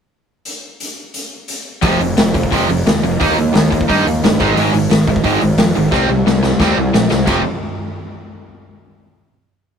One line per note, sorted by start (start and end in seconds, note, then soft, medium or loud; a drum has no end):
0.45 closed hi-hat medium
0.80 closed hi-hat medium
1.14 closed hi-hat medium
1.48 closed hi-hat medium
1.82 1.96 F1 medium
1.82 1.99 F2 medium
1.82 1.99 C3 medium
1.82 1.99 F3 medium
1.82 kick loud
1.82 open hi-hat medium
2.00 2.13 F1 medium
2.00 2.16 F2 medium
2.00 2.16 C3 medium
2.00 open hi-hat medium
2.17 2.31 F1 medium
2.17 2.33 F2 medium
2.17 2.33 C3 medium
2.17 snare loud
2.17 open hi-hat medium
2.34 2.47 F1 medium
2.34 2.49 F2 medium
2.34 2.50 C3 medium
2.34 kick medium
2.34 open hi-hat medium
2.43 kick medium
2.51 2.65 F1 medium
2.51 2.67 F2 medium
2.51 2.68 C3 loud
2.51 2.68 F3 loud
2.51 kick medium
2.51 open hi-hat medium
2.69 2.82 F1 medium
2.69 2.84 F2 medium
2.69 2.84 C3 medium
2.69 open hi-hat medium
2.87 2.99 D#2 medium
2.87 3.02 F2 medium
2.87 3.02 C3 medium
2.87 snare loud
2.87 open hi-hat medium
3.04 3.16 F1 medium
3.04 3.19 F2 medium
3.04 3.19 C3 medium
3.04 open hi-hat medium
3.20 3.33 D#2 medium
3.20 3.36 D#3 medium
3.20 3.36 A#3 medium
3.20 3.36 D#4 medium
3.20 kick loud
3.20 open hi-hat medium
3.37 3.50 D#2 medium
3.37 3.52 D#3 medium
3.37 3.53 A#3 medium
3.37 open hi-hat medium
3.54 3.80 D#2 medium
3.54 3.69 D#3 medium
3.54 3.69 A#3 medium
3.54 snare loud
3.54 open hi-hat medium
3.70 3.86 D#3 medium
3.70 3.87 A#3 medium
3.70 kick medium
3.70 open hi-hat medium
3.81 kick medium
3.88 4.02 G2 medium
3.88 4.04 D#3 medium
3.88 4.04 A#3 medium
3.88 4.05 D#4 loud
3.88 kick medium
3.88 open hi-hat medium
4.06 4.18 D#2 medium
4.06 4.21 D#3 medium
4.06 4.21 A#3 medium
4.06 open hi-hat medium
4.24 4.36 G1 medium
4.24 4.38 D#3 medium
4.24 4.39 A#3 medium
4.24 snare loud
4.24 open hi-hat medium
4.40 4.53 G#1 medium
4.40 4.56 G#2 medium
4.40 4.56 D#3 loud
4.40 4.56 G#3 medium
4.40 kick medium
4.40 open hi-hat medium
4.57 4.69 G#1 medium
4.57 4.73 G#2 medium
4.57 4.73 D#3 medium
4.57 4.74 G#3 medium
4.57 open hi-hat medium
4.74 4.86 G#1 medium
4.74 4.89 G#2 medium
4.74 4.90 D#3 medium
4.74 open hi-hat medium
4.91 5.04 G#1 medium
4.91 5.06 G#2 medium
4.91 5.06 D#3 medium
4.91 snare loud
4.91 open hi-hat medium
5.07 5.20 G#1 medium
5.07 5.23 G#2 medium
5.07 5.23 D#3 medium
5.07 kick medium
5.07 open hi-hat medium
5.16 kick medium
5.24 5.37 G#1 medium
5.24 5.40 G#2 medium
5.24 5.41 D#3 loud
5.24 5.41 G#3 medium
5.24 kick medium
5.24 open hi-hat medium
5.41 5.55 G#1 medium
5.41 5.56 G#2 medium
5.41 5.57 D#3 medium
5.41 open hi-hat medium
5.58 5.71 F2 medium
5.58 5.73 G#2 medium
5.58 5.74 D#3 medium
5.58 snare loud
5.58 open hi-hat medium
5.76 5.88 G#1 medium
5.76 5.90 G#2 medium
5.76 5.90 D#3 medium
5.76 open hi-hat medium
5.92 6.04 C2 loud
5.92 6.07 C3 medium
5.92 6.08 G3 medium
5.92 6.08 C4 medium
5.92 kick loud
5.92 snare medium
6.09 6.21 C2 medium
6.09 6.24 C3 medium
6.09 6.24 G3 medium
6.26 6.51 C2 medium
6.26 6.41 C3 medium
6.26 6.42 G3 medium
6.26 snare medium
6.43 6.58 C3 medium
6.43 6.58 G3 medium
6.43 snare medium
6.59 6.72 D#2 medium
6.59 6.75 C3 medium
6.59 6.76 G3 medium
6.59 6.76 C4 loud
6.59 kick loud
6.59 snare medium
6.77 6.89 C2 medium
6.77 6.92 C3 medium
6.77 6.92 G3 medium
6.93 7.06 A#1 medium
6.93 7.09 C3 medium
6.93 7.09 G3 medium
6.93 snare loud
7.10 7.23 C2 medium
7.10 7.26 C3 medium
7.10 7.26 G3 medium
7.10 snare medium
7.26 7.43 F1 medium
7.26 7.40 F2 medium
7.26 7.41 C3 medium
7.26 7.41 F3 loud
7.26 kick loud
7.26 crash medium